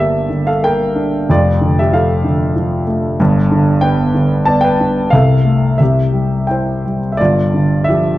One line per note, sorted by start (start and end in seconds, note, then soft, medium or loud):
0.00 1.26 G1 medium
0.00 1.26 G2 medium
0.00 0.28 D3 soft
0.00 0.61 A#3 soft
0.00 1.31 G4 medium
0.00 1.31 D5 medium
0.00 0.49 E5 medium
0.29 1.26 D3 soft
0.47 0.62 A4 medium
0.47 0.64 F5 medium
0.63 1.27 A#3 medium
0.63 1.26 A#4 medium
0.63 1.26 G5 medium
0.95 1.28 D4 soft
1.29 3.15 F1 medium
1.29 3.15 F2 medium
1.29 1.75 F4 medium
1.29 1.79 D5 medium
1.61 2.23 D3 medium
1.79 1.93 G4 medium
1.79 1.94 E5 medium
1.93 2.54 F3 medium
1.93 2.84 A4 medium
1.93 2.84 F5 medium
2.24 3.17 D3 medium
2.56 3.17 F3 medium
2.87 3.18 A3 medium
3.20 5.09 G1 medium
3.20 5.09 G2 medium
3.51 4.13 D3 medium
3.81 4.46 B3 medium
3.81 4.43 B4 medium
3.81 4.48 G5 medium
4.14 5.10 D3 medium
4.45 5.11 B3 medium
4.45 4.63 D5 medium
4.45 4.63 A5 medium
4.61 5.10 B4 medium
4.61 5.08 G5 medium
4.80 5.12 D4 medium
5.10 5.76 C2 medium
5.10 5.78 C3 medium
5.10 5.77 A4 medium
5.10 5.81 F5 medium
5.45 5.78 A3 medium
5.78 7.15 C2 medium
5.78 7.15 C3 medium
5.78 6.46 G4 medium
5.78 6.50 E5 medium
6.13 6.84 G3 medium
6.47 7.17 E4 soft
6.47 6.97 G5 medium
6.51 6.99 C5 medium
6.85 7.19 G3 soft
7.12 7.20 E5 medium
7.17 8.18 G1 medium
7.17 8.18 G2 medium
7.17 7.85 F4 medium
7.17 7.89 D5 medium
7.54 8.18 D3 soft
7.84 8.18 E5 medium
7.88 8.18 F3 medium
7.88 8.18 G4 medium